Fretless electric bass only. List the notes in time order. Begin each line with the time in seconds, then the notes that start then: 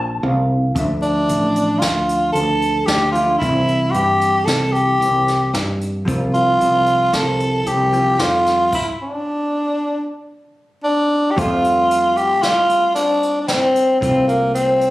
Already playing: A#1
0.23 C2
0.76 D2
1.30 A1
1.82 D2
2.35 D2
2.88 D2
3.41 C2
3.94 G2
4.47 C2
5.01 C2
5.54 G2
6.08 C2
6.61 C2
7.14 C2
7.66 C2
8.19 F2
11.38 F2
14.02 C2